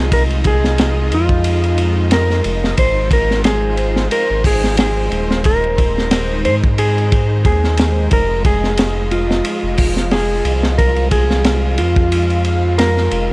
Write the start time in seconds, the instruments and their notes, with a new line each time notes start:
Already playing: analog synth bass C2, string machine G#3 F4 D#5, synth drone D#4, clean electric guitar G#4
0.11 clean electric guitar A#4, kick, ride
0.30 ride
0.44 clean electric guitar G#4, kick, ride
0.64 snare
0.78 snare, ride
1.11 analog synth bass F2, clean electric guitar F4, ride
1.29 kick
1.44 ride
1.64 ride
1.78 ride
2.11 clean electric guitar A#4, snare, ride
2.30 snare
2.44 analog synth bass F1, ride
2.64 snare
2.77 analog synth bass G#1, string machine G#3 F4 C5, clean electric guitar C5, kick, ride
3.11 clean electric guitar A#4, kick, ride
3.31 snare
3.44 clean electric guitar G#4, snare, ride
3.77 ride
3.96 snare
4.11 clean electric guitar A#4, ride
4.30 analog synth bass G#1
4.44 clean electric guitar G#4, kick, open hi-hat
4.64 snare
4.77 clean electric guitar G#4, snare, ride
5.11 analog synth bass D#1, ride
5.31 snare
5.44 string machine D#4, clean electric guitar A#4, kick, ride
5.64 ride
5.78 kick, ride
5.98 snare
6.11 snare, ride
6.45 analog synth bass G#2, clean electric guitar C5, ride
6.64 kick
6.78 clean electric guitar G#4, ride
6.98 ride
7.12 kick, ride
7.45 analog synth bass D#2, clean electric guitar G#4, kick, ride
7.64 snare
7.77 snare, ride
8.11 analog synth bass F1, synth drone F3 F4, string machine F4 D#5, clean electric guitar A#4, kick, ride
8.45 clean electric guitar G#4, kick, ride
8.64 snare
8.77 snare, ride
9.11 clean electric guitar F4, ride
9.31 snare
9.44 ride
9.63 analog synth bass F1
9.78 kick, open hi-hat
9.97 snare
10.11 clean electric guitar G#4, snare, ride
10.45 analog synth bass C2, ride
10.63 snare
10.77 clean electric guitar A#4, string machine F5, kick, ride
10.96 ride
11.11 clean electric guitar G#4, kick, ride
11.31 snare
11.44 snare, ride
11.78 analog synth bass F2, clean electric guitar F4, ride
11.96 kick
12.12 ride
12.30 ride
12.44 ride
12.78 clean electric guitar A#4, snare, ride
12.97 snare
13.11 analog synth bass F1, ride